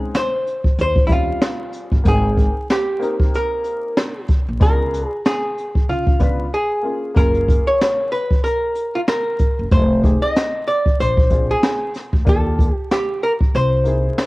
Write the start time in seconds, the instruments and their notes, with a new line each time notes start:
Already playing: upright piano G#3 C4 C#4 D#4, hollow-body jazz guitar G#4
0.14 hollow-body jazz guitar C5, snare, closed hi-hat
0.47 closed hi-hat
0.64 kick
0.79 upright bass D#2, hollow-body jazz guitar C5, closed hi-hat
0.96 kick
1.07 upright piano G3 C4 C#4, hollow-body jazz guitar E4, kick, closed hi-hat
1.12 upright piano F4, hollow-body jazz guitar F4
1.42 snare, closed hi-hat
1.73 closed hi-hat
1.92 upright bass G1, kick
2.04 upright bass G#1, upright piano A#3 C4 D#4 G5, kick, closed hi-hat
2.08 hollow-body jazz guitar G#4
2.37 kick, closed hi-hat
2.70 hollow-body jazz guitar G4, snare, closed hi-hat
2.99 upright piano A#3 C4 D#4 A#4, closed hi-hat
3.20 kick
3.34 hollow-body jazz guitar A#4, closed hi-hat
3.64 closed hi-hat
3.97 snare, closed hi-hat
4.28 kick, closed hi-hat
4.48 upright bass A#1
4.60 upright bass C#2, upright piano B3 D4 F4 F#4, hollow-body jazz guitar A#4, kick, closed hi-hat
4.69 upright piano G#4
4.94 closed hi-hat
5.07 hollow-body jazz guitar G#4
5.25 hollow-body jazz guitar G#4, snare, closed hi-hat
5.58 closed hi-hat
5.75 kick
5.89 upright bass C#3, hollow-body jazz guitar F4, closed hi-hat
6.07 kick
6.19 upright bass C#2, upright piano B3 D4 F4 B4, kick, closed hi-hat
6.54 hollow-body jazz guitar G#4
6.82 upright piano A#3 C#4 F4 G#4
7.14 upright bass F#1, upright piano A#3 C#4 F4 G#4, hollow-body jazz guitar A#4, kick, closed hi-hat
7.34 closed hi-hat
7.49 kick, closed hi-hat
7.67 hollow-body jazz guitar C#5
7.81 snare, closed hi-hat
8.12 hollow-body jazz guitar B4, closed hi-hat
8.31 kick
8.44 hollow-body jazz guitar A#4, closed hi-hat
8.75 closed hi-hat
8.95 hollow-body jazz guitar F4
9.08 hollow-body jazz guitar A#4, snare, closed hi-hat
9.39 kick, closed hi-hat
9.59 upright bass F#1
9.71 upright bass F1, hollow-body jazz guitar C5, kick, closed hi-hat
10.01 upright piano C4 D#4 G4 G#4, kick, closed hi-hat
10.22 hollow-body jazz guitar D#5
10.36 snare, closed hi-hat
10.68 hollow-body jazz guitar D5, closed hi-hat
10.86 kick
11.00 upright bass A#1, hollow-body jazz guitar C5, closed hi-hat
11.17 kick
11.29 upright piano C4 D4 F4 G#4, kick, closed hi-hat
11.51 hollow-body jazz guitar G#4
11.63 snare, closed hi-hat
11.94 snare, closed hi-hat
12.13 upright bass D2, kick
12.25 upright bass D#2, upright piano A#3 D4 F4 G4, kick, closed hi-hat
12.29 hollow-body jazz guitar A4
12.59 kick, closed hi-hat
12.74 hollow-body jazz guitar G4
12.91 hollow-body jazz guitar G4, snare, closed hi-hat
13.23 hollow-body jazz guitar A#4, closed hi-hat
13.41 kick
13.55 upright bass C2, hollow-body jazz guitar C5, closed hi-hat
13.84 upright piano A#3 D#4 E4 G#4, closed hi-hat
14.18 snare, closed hi-hat